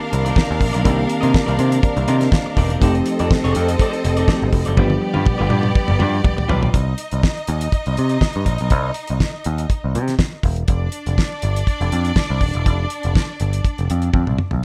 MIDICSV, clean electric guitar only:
0, 0, Header, 1, 3, 480
1, 0, Start_track
1, 0, Tempo, 492207
1, 834, Time_signature, 4, 2, 24, 8
1, 14280, End_track
2, 0, Start_track
2, 0, Title_t, "Clean electric guitar"
2, 0, Program_c, 0, 27
2, 242, Note_on_c, 0, 74, 71
2, 248, Note_on_c, 0, 70, 55
2, 258, Note_on_c, 0, 63, 56
2, 334, Note_off_c, 0, 63, 0
2, 346, Note_off_c, 0, 74, 0
2, 346, Note_on_c, 0, 63, 95
2, 347, Note_off_c, 0, 70, 0
2, 358, Note_on_c, 0, 70, 96
2, 358, Note_on_c, 0, 74, 88
2, 470, Note_off_c, 0, 74, 0
2, 476, Note_off_c, 0, 70, 0
2, 503, Note_off_c, 0, 63, 0
2, 713, Note_on_c, 0, 74, 59
2, 722, Note_on_c, 0, 70, 64
2, 731, Note_on_c, 0, 63, 52
2, 810, Note_off_c, 0, 63, 0
2, 815, Note_off_c, 0, 70, 0
2, 821, Note_off_c, 0, 74, 0
2, 822, Note_on_c, 0, 63, 99
2, 827, Note_on_c, 0, 70, 103
2, 833, Note_on_c, 0, 74, 92
2, 930, Note_off_c, 0, 74, 0
2, 942, Note_off_c, 0, 70, 0
2, 980, Note_off_c, 0, 63, 0
2, 1177, Note_on_c, 0, 75, 67
2, 1187, Note_on_c, 0, 70, 67
2, 1191, Note_on_c, 0, 63, 64
2, 1280, Note_off_c, 0, 63, 0
2, 1285, Note_off_c, 0, 70, 0
2, 1294, Note_off_c, 0, 75, 0
2, 1427, Note_on_c, 0, 74, 78
2, 1432, Note_on_c, 0, 70, 79
2, 1442, Note_on_c, 0, 63, 68
2, 1534, Note_off_c, 0, 63, 0
2, 1539, Note_off_c, 0, 70, 0
2, 1546, Note_on_c, 0, 63, 56
2, 1548, Note_off_c, 0, 74, 0
2, 1551, Note_on_c, 0, 70, 60
2, 1560, Note_on_c, 0, 74, 69
2, 1669, Note_off_c, 0, 74, 0
2, 1671, Note_off_c, 0, 63, 0
2, 1673, Note_off_c, 0, 70, 0
2, 2028, Note_on_c, 0, 63, 96
2, 2031, Note_on_c, 0, 70, 103
2, 2039, Note_on_c, 0, 74, 85
2, 2151, Note_off_c, 0, 74, 0
2, 2161, Note_off_c, 0, 70, 0
2, 2182, Note_off_c, 0, 63, 0
2, 2513, Note_on_c, 0, 63, 88
2, 2519, Note_on_c, 0, 70, 100
2, 2519, Note_on_c, 0, 74, 110
2, 2628, Note_off_c, 0, 74, 0
2, 2637, Note_off_c, 0, 70, 0
2, 2640, Note_on_c, 0, 74, 64
2, 2642, Note_off_c, 0, 63, 0
2, 2649, Note_on_c, 0, 70, 51
2, 2654, Note_on_c, 0, 63, 53
2, 2737, Note_off_c, 0, 63, 0
2, 2746, Note_off_c, 0, 74, 0
2, 2749, Note_on_c, 0, 63, 78
2, 2750, Note_off_c, 0, 70, 0
2, 2758, Note_on_c, 0, 69, 99
2, 2763, Note_on_c, 0, 74, 96
2, 2872, Note_off_c, 0, 74, 0
2, 2881, Note_off_c, 0, 69, 0
2, 2901, Note_off_c, 0, 63, 0
2, 3118, Note_on_c, 0, 74, 76
2, 3125, Note_on_c, 0, 69, 68
2, 3132, Note_on_c, 0, 63, 71
2, 3223, Note_off_c, 0, 63, 0
2, 3224, Note_off_c, 0, 74, 0
2, 3227, Note_off_c, 0, 69, 0
2, 3357, Note_on_c, 0, 74, 99
2, 3363, Note_on_c, 0, 69, 75
2, 3367, Note_on_c, 0, 63, 74
2, 3462, Note_off_c, 0, 63, 0
2, 3467, Note_off_c, 0, 69, 0
2, 3474, Note_off_c, 0, 74, 0
2, 3474, Note_on_c, 0, 63, 68
2, 3478, Note_on_c, 0, 69, 69
2, 3486, Note_on_c, 0, 74, 75
2, 3590, Note_off_c, 0, 74, 0
2, 3592, Note_off_c, 0, 63, 0
2, 3594, Note_off_c, 0, 69, 0
2, 3708, Note_on_c, 0, 63, 87
2, 3715, Note_on_c, 0, 69, 87
2, 3722, Note_on_c, 0, 74, 111
2, 3819, Note_off_c, 0, 74, 0
2, 3829, Note_off_c, 0, 69, 0
2, 3858, Note_off_c, 0, 63, 0
2, 4067, Note_on_c, 0, 74, 67
2, 4076, Note_on_c, 0, 69, 63
2, 4084, Note_on_c, 0, 63, 57
2, 4161, Note_off_c, 0, 63, 0
2, 4166, Note_off_c, 0, 69, 0
2, 4172, Note_on_c, 0, 63, 102
2, 4177, Note_off_c, 0, 74, 0
2, 4178, Note_on_c, 0, 69, 99
2, 4187, Note_on_c, 0, 74, 109
2, 4298, Note_off_c, 0, 74, 0
2, 4306, Note_off_c, 0, 69, 0
2, 4330, Note_off_c, 0, 63, 0
2, 4543, Note_on_c, 0, 74, 70
2, 4552, Note_on_c, 0, 69, 64
2, 4556, Note_on_c, 0, 63, 55
2, 4648, Note_off_c, 0, 63, 0
2, 4651, Note_off_c, 0, 74, 0
2, 4652, Note_on_c, 0, 65, 97
2, 4653, Note_off_c, 0, 69, 0
2, 4657, Note_on_c, 0, 71, 96
2, 4663, Note_on_c, 0, 74, 115
2, 4770, Note_off_c, 0, 74, 0
2, 4779, Note_off_c, 0, 71, 0
2, 4809, Note_off_c, 0, 65, 0
2, 5008, Note_on_c, 0, 77, 79
2, 5017, Note_on_c, 0, 71, 77
2, 5022, Note_on_c, 0, 65, 62
2, 5106, Note_off_c, 0, 65, 0
2, 5108, Note_off_c, 0, 71, 0
2, 5116, Note_off_c, 0, 77, 0
2, 5246, Note_on_c, 0, 74, 83
2, 5255, Note_on_c, 0, 71, 86
2, 5259, Note_on_c, 0, 65, 74
2, 5344, Note_off_c, 0, 65, 0
2, 5354, Note_off_c, 0, 71, 0
2, 5356, Note_on_c, 0, 65, 64
2, 5359, Note_off_c, 0, 74, 0
2, 5366, Note_on_c, 0, 71, 59
2, 5370, Note_on_c, 0, 74, 65
2, 5483, Note_off_c, 0, 74, 0
2, 5488, Note_off_c, 0, 71, 0
2, 5490, Note_off_c, 0, 65, 0
2, 5841, Note_on_c, 0, 65, 98
2, 5847, Note_on_c, 0, 71, 99
2, 5854, Note_on_c, 0, 74, 96
2, 5965, Note_off_c, 0, 74, 0
2, 5978, Note_off_c, 0, 71, 0
2, 6003, Note_off_c, 0, 65, 0
2, 6322, Note_on_c, 0, 65, 83
2, 6329, Note_on_c, 0, 71, 90
2, 6337, Note_on_c, 0, 74, 102
2, 6436, Note_off_c, 0, 74, 0
2, 6438, Note_off_c, 0, 71, 0
2, 6447, Note_off_c, 0, 65, 0
2, 6448, Note_on_c, 0, 74, 72
2, 6450, Note_on_c, 0, 71, 60
2, 6458, Note_on_c, 0, 65, 52
2, 6565, Note_off_c, 0, 74, 0
2, 6566, Note_off_c, 0, 71, 0
2, 6570, Note_off_c, 0, 65, 0
2, 14280, End_track
3, 0, Start_track
3, 0, Title_t, "Muted clean electric guitar strokes"
3, 0, Note_on_c, 9, 29, 53
3, 98, Note_off_c, 9, 29, 0
3, 116, Note_on_c, 9, 29, 47
3, 213, Note_off_c, 9, 29, 0
3, 482, Note_on_c, 9, 29, 38
3, 579, Note_off_c, 9, 29, 0
3, 593, Note_on_c, 9, 29, 41
3, 691, Note_off_c, 9, 29, 0
3, 942, Note_on_c, 9, 29, 43
3, 1039, Note_off_c, 9, 29, 0
3, 1049, Note_on_c, 9, 29, 46
3, 1146, Note_off_c, 9, 29, 0
3, 1680, Note_on_c, 9, 29, 42
3, 1778, Note_off_c, 9, 29, 0
3, 1916, Note_on_c, 9, 29, 44
3, 2014, Note_off_c, 9, 29, 0
3, 2163, Note_on_c, 9, 29, 45
3, 2260, Note_off_c, 9, 29, 0
3, 2279, Note_on_c, 9, 29, 47
3, 2376, Note_off_c, 9, 29, 0
3, 2399, Note_on_c, 9, 29, 53
3, 2497, Note_off_c, 9, 29, 0
3, 2884, Note_on_c, 9, 29, 52
3, 2982, Note_off_c, 9, 29, 0
3, 2995, Note_on_c, 9, 29, 42
3, 3093, Note_off_c, 9, 29, 0
3, 3235, Note_on_c, 9, 29, 47
3, 3333, Note_off_c, 9, 29, 0
3, 3831, Note_on_c, 9, 29, 47
3, 3928, Note_off_c, 9, 29, 0
3, 3944, Note_on_c, 9, 29, 46
3, 4041, Note_off_c, 9, 29, 0
3, 4309, Note_on_c, 9, 29, 53
3, 4407, Note_off_c, 9, 29, 0
3, 4422, Note_on_c, 9, 29, 40
3, 4520, Note_off_c, 9, 29, 0
3, 4781, Note_on_c, 9, 29, 51
3, 4879, Note_off_c, 9, 29, 0
3, 4882, Note_on_c, 9, 29, 42
3, 4979, Note_off_c, 9, 29, 0
3, 5118, Note_on_c, 9, 29, 35
3, 5216, Note_off_c, 9, 29, 0
3, 5495, Note_on_c, 9, 29, 41
3, 5593, Note_off_c, 9, 29, 0
3, 5726, Note_on_c, 9, 29, 36
3, 5824, Note_off_c, 9, 29, 0
3, 5977, Note_on_c, 9, 29, 44
3, 6074, Note_off_c, 9, 29, 0
3, 6081, Note_on_c, 9, 29, 43
3, 6178, Note_off_c, 9, 29, 0
3, 6208, Note_on_c, 9, 29, 45
3, 6306, Note_off_c, 9, 29, 0
3, 14280, End_track
0, 0, End_of_file